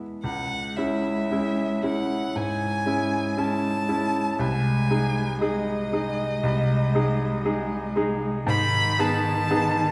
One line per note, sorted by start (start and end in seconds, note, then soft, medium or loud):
0.00 0.26 B2 soft
0.00 0.26 G#3 soft
0.00 0.23 B3 soft
0.00 0.26 E4 soft
0.23 0.76 C#2 medium
0.23 2.32 G#3 medium
0.23 0.78 F#5 medium
0.76 1.27 G#3 soft
0.76 1.27 C#4 soft
0.76 1.27 E4 soft
0.76 1.83 E5 medium
1.31 1.80 G#3 soft
1.31 1.80 C#4 soft
1.31 1.80 E4 medium
1.83 2.31 G#3 soft
1.83 2.31 C#4 soft
1.83 2.31 E4 soft
1.83 2.37 F#5 medium
2.35 2.85 G#2 medium
2.35 4.36 G#3 medium
2.35 3.39 G#5 medium
2.86 3.34 G#3 soft
2.86 3.34 C#4 soft
2.86 3.34 E4 medium
3.37 3.85 G#3 soft
3.37 3.85 C#4 soft
3.37 3.85 E4 soft
3.37 4.41 A5 medium
3.89 4.36 G#3 soft
3.89 4.36 C#4 soft
3.89 4.36 E4 medium
4.39 4.89 C2 medium
4.39 5.40 G#3 medium
4.39 5.41 G#5 medium
4.90 5.38 G#3 soft
4.90 5.38 D#4 soft
4.90 5.38 G#4 medium
5.41 8.43 G#3 medium
5.41 5.89 G#3 medium
5.41 5.89 D#4 medium
5.41 5.89 G#4 medium
5.41 7.93 D#5 medium
5.92 6.40 G#3 soft
5.92 6.40 D#4 medium
5.92 6.40 G#4 medium
6.43 6.93 C2 medium
6.95 7.42 G#3 medium
6.95 7.42 D#4 medium
6.95 7.43 G#4 medium
7.45 7.92 G#3 medium
7.45 7.93 D#4 medium
7.45 7.93 G#4 medium
7.96 8.43 G#3 medium
7.96 8.44 D#4 medium
7.96 8.44 G#4 medium
8.47 8.97 G#2 medium
8.47 9.92 D#3 medium
8.47 9.02 B5 loud
8.99 9.47 B3 medium
8.99 9.47 D#4 medium
8.99 9.48 G#4 medium
8.99 9.92 A5 loud
9.50 9.92 B3 medium
9.50 9.92 D#4 medium
9.50 9.92 G#4 medium